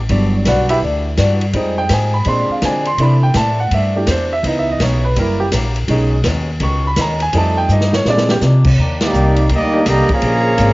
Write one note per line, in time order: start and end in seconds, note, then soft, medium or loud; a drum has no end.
0.09 0.45 G1 loud
0.09 0.35 E3 medium
0.09 0.67 F#3 medium
0.09 0.67 G3 soft
0.09 0.35 G3 medium
0.09 0.67 D4 medium
0.09 0.36 D4 medium
0.09 0.36 F#4 medium
0.09 kick soft
0.09 ride medium
0.45 0.81 B1 medium
0.45 0.71 E3 medium
0.45 0.71 G3 medium
0.45 0.72 D4 medium
0.45 0.72 F#4 medium
0.45 0.70 F#4 medium
0.45 0.69 B4 medium
0.45 0.70 D5 medium
0.45 0.70 F#5 medium
0.45 kick soft
0.45 snare medium
0.45 hi-hat pedal medium
0.45 ride medium
0.69 0.78 E4 medium
0.69 0.78 G4 medium
0.69 0.78 B4 medium
0.69 0.77 E5 loud
0.69 ride medium
0.81 1.17 D2 medium
0.81 1.07 E3 medium
0.81 1.08 G3 medium
0.81 1.08 D4 medium
0.81 1.08 F#4 medium
0.81 kick soft
1.17 1.53 G2 loud
1.17 1.43 E3 medium
1.17 1.43 G3 medium
1.17 1.43 D4 medium
1.17 1.44 F#4 medium
1.17 kick soft
1.17 snare medium
1.17 hi-hat pedal medium
1.17 ride medium
1.41 ride medium
1.53 1.89 F2 loud
1.53 1.79 F3 medium
1.53 1.82 G3 medium
1.53 1.82 G#3 soft
1.53 1.80 C4 medium
1.53 1.80 D#4 medium
1.53 1.83 D#4 medium
1.53 1.81 G#4 medium
1.53 kick soft
1.53 ride medium
1.78 1.90 G5 medium
1.89 2.25 G#2 loud
1.89 2.15 F3 medium
1.89 2.16 C4 medium
1.89 2.16 D#4 medium
1.89 2.16 G#4 medium
1.89 kick soft
1.89 snare medium
1.89 hi-hat pedal medium
1.89 ride medium
1.94 2.15 G#5 medium
2.14 2.26 B5 medium
2.25 2.48 A#2 medium
2.25 2.51 A#2 medium
2.25 2.83 G#3 medium
2.25 2.52 G#3 medium
2.25 2.83 C4 soft
2.25 2.52 C4 medium
2.25 2.84 D4 medium
2.25 2.50 C6 loud
2.25 kick soft
2.25 ride medium
2.29 2.53 D4 medium
2.49 2.63 F5 medium
2.49 muted upright bass stroke soft
2.62 2.88 A#2 medium
2.62 2.97 D3 medium
2.62 2.89 G#3 medium
2.62 2.89 C4 medium
2.62 2.89 D4 medium
2.62 2.87 G#5 medium
2.62 kick soft
2.62 snare medium
2.62 hi-hat pedal medium
2.62 ride medium
2.85 2.99 C6 loud
2.85 ride medium
2.97 3.33 C3 medium
2.97 3.25 C3 medium
2.97 3.26 E3 medium
2.97 3.27 A3 soft
2.97 3.27 D4 medium
2.97 kick soft
2.97 ride medium
3.02 3.25 E3 medium
3.02 3.25 A3 medium
3.02 3.26 D4 medium
3.02 3.24 B5 medium
3.23 3.35 G5 medium
3.34 3.70 A2 loud
3.34 3.61 C3 medium
3.34 3.61 E3 medium
3.34 3.61 A3 medium
3.34 3.59 A5 medium
3.34 kick soft
3.34 snare medium
3.34 hi-hat pedal medium
3.34 ride medium
3.38 3.62 D4 medium
3.60 3.72 F#5 medium
3.71 4.06 G2 medium
3.71 3.97 C3 soft
3.71 3.98 E3 medium
3.71 3.96 E5 medium
3.71 kick soft
3.71 ride medium
3.75 3.98 A3 medium
3.75 3.98 D4 medium
3.96 4.07 E3 soft
3.96 4.07 A3 soft
3.96 4.07 D4 soft
3.96 4.08 G4 medium
4.07 4.42 E2 loud
4.07 4.33 C3 medium
4.07 4.33 E3 medium
4.07 4.33 A3 medium
4.07 4.34 D4 medium
4.07 4.32 C5 medium
4.07 kick soft
4.07 snare medium
4.07 hi-hat pedal medium
4.07 ride medium
4.33 4.44 E5 loud
4.43 4.78 C#2 loud
4.43 4.69 C#3 medium
4.43 5.01 E3 medium
4.43 4.69 E3 medium
4.43 5.01 B3 soft
4.43 4.70 B3 medium
4.43 5.02 D#4 medium
4.43 4.70 D#4 medium
4.43 kick soft
4.43 ride medium
4.47 4.57 D#5 medium
4.59 4.69 E5 medium
4.72 4.82 D#5 medium
4.79 5.15 B1 loud
4.79 5.05 C#3 medium
4.79 5.05 E3 medium
4.79 5.05 B3 medium
4.79 5.06 D#4 medium
4.79 5.04 C#5 medium
4.79 kick soft
4.79 snare medium
4.79 hi-hat pedal medium
4.79 ride medium
5.05 5.17 B4 medium
5.16 5.51 F#1 medium
5.16 5.41 F#3 medium
5.16 5.44 G3 medium
5.16 5.41 A#3 medium
5.16 5.44 A#3 medium
5.16 5.42 E4 medium
5.16 5.45 E4 medium
5.16 5.42 G4 medium
5.16 5.41 A#4 medium
5.16 kick soft
5.16 ride medium
5.40 5.47 G4 medium
5.52 5.87 A#1 loud
5.52 5.77 F#3 medium
5.52 5.78 A#3 medium
5.52 5.78 E4 medium
5.52 5.78 G4 medium
5.52 kick soft
5.52 snare medium
5.52 hi-hat pedal medium
5.52 ride medium
5.76 ride medium
5.88 6.23 B1 loud
5.88 6.14 B2 medium
5.88 6.14 D#3 medium
5.88 6.16 G#3 medium
5.88 6.14 G#3 medium
5.88 6.16 C#4 medium
5.88 6.15 C#4 medium
5.88 6.17 D#4 medium
5.88 kick soft
5.88 ride medium
6.24 6.59 D#2 loud
6.24 6.50 B2 medium
6.24 6.50 D#3 medium
6.24 6.50 G#3 medium
6.24 6.50 C#4 medium
6.24 kick soft
6.24 snare medium
6.24 hi-hat pedal medium
6.24 ride medium
6.60 6.95 C#2 loud
6.60 6.86 B2 medium
6.60 6.86 D#3 medium
6.60 6.86 G#3 medium
6.60 6.87 C#4 medium
6.60 6.85 C#6 loud
6.60 kick soft
6.60 ride medium
6.87 6.98 B5 medium
6.96 7.32 D#2 loud
6.96 7.22 B2 medium
6.96 7.23 D#3 medium
6.96 7.23 G#3 medium
6.96 7.23 C#4 medium
6.96 kick soft
6.96 snare medium
6.96 hi-hat pedal medium
6.96 ride medium
7.01 7.22 A#5 medium
7.20 7.34 G#5 loud
7.20 ride medium
7.33 7.68 F2 loud
7.33 7.58 F3 medium
7.33 7.90 G3 medium
7.33 7.58 A3 medium
7.33 7.91 A3 soft
7.33 7.59 D#4 medium
7.33 7.91 D#4 medium
7.33 7.59 G4 medium
7.33 kick soft
7.33 ride medium
7.38 7.58 A5 medium
7.57 7.69 G5 medium
7.69 8.04 G2 loud
7.69 7.94 F3 medium
7.69 7.95 A3 medium
7.69 7.94 D#4 medium
7.69 7.95 G4 medium
7.69 7.94 D#5 medium
7.69 hi-hat pedal medium
7.81 snare medium
7.93 8.06 C#5 medium
7.93 snare medium
8.05 8.40 A#2 medium
8.05 8.31 A#2 medium
8.05 8.33 G3 medium
8.05 8.31 G#3 medium
8.05 8.34 G#3 medium
8.05 8.34 C4 medium
8.05 8.32 D4 medium
8.05 8.34 D4 medium
8.05 8.32 G4 medium
8.05 snare medium
8.10 8.31 D5 medium
8.18 snare medium
8.29 8.38 G4 medium
8.29 snare loud
8.41 8.66 A#2 medium
8.41 8.77 C3 loud
8.41 8.67 G#3 medium
8.41 8.67 D4 medium
8.41 8.68 G4 medium
8.41 snare medium
8.41 hi-hat pedal medium
8.64 kick medium
8.64 crash loud
8.77 9.12 D#2 medium
8.77 9.03 D#3 medium
8.77 9.04 A#3 medium
8.77 9.04 D4 medium
8.77 9.04 G4 medium
8.77 kick soft
9.01 9.48 G3 medium
9.01 9.47 A#3 medium
9.01 9.48 A#3 medium
9.01 9.48 D#4 medium
9.01 9.48 G4 medium
9.01 9.48 D5 medium
9.01 snare loud
9.01 ride medium
9.13 9.49 C2 loud
9.13 9.39 D#3 medium
9.13 9.40 A#3 medium
9.13 9.40 D4 medium
9.13 9.40 G4 medium
9.13 hi-hat pedal medium
9.36 ride medium
9.49 9.85 D2 medium
9.49 9.76 D#3 medium
9.49 9.85 G3 medium
9.49 9.76 A#3 medium
9.49 9.85 A#3 medium
9.49 9.76 D4 medium
9.49 9.85 D#4 medium
9.49 9.77 G4 medium
9.49 kick soft
9.49 ride medium
9.54 9.86 A#3 medium
9.54 9.86 G4 medium
9.54 9.86 D5 medium
9.54 9.86 D#5 loud
9.74 9.82 D#3 loud
9.74 9.82 A#3 loud
9.74 9.82 D4 medium
9.74 9.82 G4 loud
9.86 10.08 C2 medium
9.86 10.10 D3 loud
9.86 10.12 D#3 medium
9.86 10.10 G3 loud
9.86 10.10 A#3 loud
9.86 10.12 A#3 medium
9.86 10.13 D4 medium
9.86 10.11 G4 loud
9.86 10.11 D5 medium
9.86 10.11 D#5 loud
9.86 10.11 A#5 loud
9.86 kick soft
9.86 snare soft
9.86 hi-hat pedal medium
9.86 ride medium
9.90 10.13 G4 medium
10.09 10.73 C#3 medium
10.09 10.73 F3 medium
10.09 10.73 A#3 medium
10.09 10.73 G#4 loud
10.09 10.73 C#5 loud
10.09 10.73 F5 loud
10.09 10.73 A#5 loud
10.09 kick medium
10.09 ride medium
10.21 10.57 A#1 medium
10.21 10.48 A#2 medium
10.21 kick soft
10.21 ride medium
10.26 10.49 G#3 medium
10.26 10.49 C#4 medium
10.26 10.50 F4 medium
10.58 10.73 G#1 loud
10.58 10.73 A#2 medium
10.58 10.73 G#3 medium
10.58 10.73 C#4 medium
10.58 kick soft
10.58 hi-hat pedal medium
10.58 ride medium
10.62 10.73 F4 medium